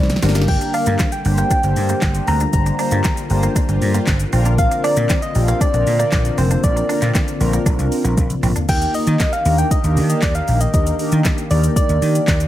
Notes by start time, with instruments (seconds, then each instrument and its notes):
Already playing: slap bass C2, analog synth pad D#3 G3 C4 G4, soft synth lead D5
0.03 snare
0.10 snare, closed hi-hat, shaker
0.16 snare
0.22 slap bass G1, analog synth pad D3 A#3 G4, analog polysynth A#3 D4 G4 A#4, clean electric guitar C4, snare, open hi-hat, shaker
0.29 snare
0.35 clean electric guitar D4, snare, closed hi-hat, shaker
0.41 snare
0.48 soft synth lead G5, kick, crash
0.61 muted clean electric guitar stroke, closed hi-hat, shaker
0.74 clean electric guitar D4, soft synth lead F5, open hi-hat, shaker
0.86 slap bass G2, clean electric guitar A#3, closed hi-hat, shaker
0.99 clean electric guitar C4, kick, snare, clap, closed hi-hat, shaker
1.12 soft synth lead G5, closed hi-hat, shaker
1.25 slap bass G1, analog polysynth A#3 D4 G4 C5, muted clean electric guitar stroke, open hi-hat, shaker
1.38 clean electric guitar A#3, soft synth lead G5, closed hi-hat, shaker
1.50 clean electric guitar D4, kick, closed hi-hat, shaker
1.63 slap bass G1, analog polysynth A#3 D4 G4 C5, muted clean electric guitar stroke, closed hi-hat, shaker
1.76 slap bass G2, open hi-hat, shaker
1.89 clean electric guitar A#3, closed hi-hat, shaker
2.02 slap bass G1, muted clean electric guitar stroke, kick, snare, clap, closed hi-hat, shaker
2.15 closed hi-hat, shaker
2.27 slap bass D2, clean electric guitar C4, analog synth pad F4, soft synth lead A#5, open hi-hat, shaker
2.40 clean electric guitar D4, closed hi-hat, shaker
2.53 slap bass G1, analog polysynth A#3 D4 G4 C5, soft synth lead A#5, kick, closed hi-hat, shaker
2.66 muted clean electric guitar stroke, closed hi-hat, shaker
2.79 analog polysynth A#3 D4 G4 C5, clean electric guitar D4, open hi-hat, shaker
2.91 slap bass G2, clean electric guitar A#3, closed hi-hat, shaker
3.04 clean electric guitar C4, kick, snare, clap, closed hi-hat, shaker
3.17 closed hi-hat, shaker
3.30 slap bass G1, analog polysynth A#3 D4 G4 C5, muted clean electric guitar stroke, open hi-hat, shaker
3.43 clean electric guitar A#3, closed hi-hat, shaker
3.56 clean electric guitar D4, kick, closed hi-hat, shaker
3.69 slap bass G1, muted clean electric guitar stroke, closed hi-hat, shaker
3.81 slap bass G2, open hi-hat, shaker
3.94 clean electric guitar A#3, closed hi-hat, shaker
4.07 slap bass G1, muted clean electric guitar stroke, kick, snare, clap, closed hi-hat, shaker
4.20 closed hi-hat, shaker
4.32 slap bass A#1, analog synth pad D3 C4, analog polysynth C4 D4 F4 A#4, clean electric guitar C4, open hi-hat, shaker
4.45 clean electric guitar D4, closed hi-hat, shaker
4.58 soft synth lead F5, kick, closed hi-hat, shaker
4.71 muted clean electric guitar stroke, closed hi-hat, shaker
4.84 clean electric guitar D4, soft synth lead D5, open hi-hat, shaker
4.97 slap bass A#2, clean electric guitar A#3, closed hi-hat, shaker
5.09 clean electric guitar C4, kick, snare, clap, closed hi-hat, shaker
5.22 soft synth lead D#5, closed hi-hat, shaker
5.35 slap bass A#1, analog polysynth C4 D4 F4 G4, muted clean electric guitar stroke, open hi-hat, shaker
5.48 clean electric guitar A#3, soft synth lead F5, closed hi-hat, shaker
5.61 clean electric guitar D4, soft synth lead D5, kick, closed hi-hat, shaker
5.73 slap bass A#1, analog polysynth C4 D4 F4 A#4, muted clean electric guitar stroke, closed hi-hat, shaker
5.87 slap bass A#2, open hi-hat, shaker
5.99 clean electric guitar A#3, soft synth lead D5, closed hi-hat, shaker
6.12 slap bass A#1, muted clean electric guitar stroke, kick, snare, clap, closed hi-hat, shaker
6.25 closed hi-hat, shaker
6.38 slap bass F1, clean electric guitar C4, soft synth lead C5, open hi-hat, shaker
6.51 clean electric guitar D4, closed hi-hat, shaker
6.63 slap bass A#1, analog polysynth C4 D4 F4 A#4, soft synth lead D5, kick, closed hi-hat, shaker
6.76 muted clean electric guitar stroke, closed hi-hat, shaker
6.89 analog polysynth C4 D4 F4 A#4, clean electric guitar D4, open hi-hat, shaker
7.02 slap bass A#2, clean electric guitar A#3, clap, closed hi-hat, shaker
7.15 clean electric guitar C4, kick, snare, clap, closed hi-hat, shaker
7.28 closed hi-hat, shaker
7.40 slap bass A#1, analog polysynth C4 D4 F4 A#4, muted clean electric guitar stroke, open hi-hat, shaker
7.53 clean electric guitar A#3, closed hi-hat, shaker
7.66 slap bass A#1, clean electric guitar D4, kick, closed hi-hat, shaker
7.79 slap bass C2, muted clean electric guitar stroke, closed hi-hat, shaker
7.92 open hi-hat, shaker
8.04 slap bass A#1, clean electric guitar A#3, closed hi-hat, shaker
8.17 slap bass A#1, muted clean electric guitar stroke, kick, closed hi-hat, high tom, shaker
8.30 closed hi-hat, mid tom, shaker
8.43 slap bass A#1, clean electric guitar C4, mid tom, open hi-hat, shaker
8.56 clean electric guitar D4, closed hi-hat, floor tom, shaker
8.68 slap bass D#2, analog synth pad D#3 A#3 G4, analog polysynth A#3 D#4 G4 A#4, soft synth lead G5, kick, closed hi-hat, crash, shaker
8.82 closed hi-hat, shaker
8.94 soft synth lead D#5, open hi-hat, shaker
9.07 slap bass D#3, closed hi-hat, shaker
9.20 kick, snare, clap, closed hi-hat, shaker
9.33 soft synth lead F5, closed hi-hat, shaker
9.45 slap bass D#2, analog polysynth A#3 D4 D#4 G4 A#4, open hi-hat, shaker
9.58 soft synth lead G5, closed hi-hat, shaker
9.71 soft synth lead D#5, kick, closed hi-hat, shaker
9.84 slap bass D#2, analog polysynth A#3 D4 D#4 G4 A#4, closed hi-hat, shaker
9.97 slap bass D#3, open hi-hat, shaker
10.09 soft synth lead D#5, closed hi-hat, shaker
10.22 slap bass D#2, soft synth lead D5, kick, snare, clap, closed hi-hat, shaker
10.35 soft synth lead F5, closed hi-hat, shaker
10.48 slap bass A#1, open hi-hat, shaker
10.61 soft synth lead D#5, closed hi-hat, shaker
10.73 slap bass D#2, analog polysynth A#3 D4 D#4 G4 A#4, soft synth lead D#5, kick, closed hi-hat, shaker
10.87 closed hi-hat, shaker
10.99 analog polysynth A#3 D4 D#4 G4 A#4, open hi-hat, shaker
11.12 slap bass D#3, closed hi-hat, shaker
11.25 kick, snare, clap, closed hi-hat, shaker
11.38 closed hi-hat, shaker
11.50 slap bass D#2, analog polysynth A#3 D4 D#4 G4 A#4, soft synth lead D5, open hi-hat, shaker
11.64 closed hi-hat, shaker
11.76 soft synth lead D5, kick, closed hi-hat, shaker
11.89 slap bass D#2, closed hi-hat, shaker
12.02 slap bass D#3, open hi-hat, shaker
12.15 closed hi-hat, shaker
12.28 slap bass D#2, kick, snare, clap, closed hi-hat, shaker
12.40 closed hi-hat, shaker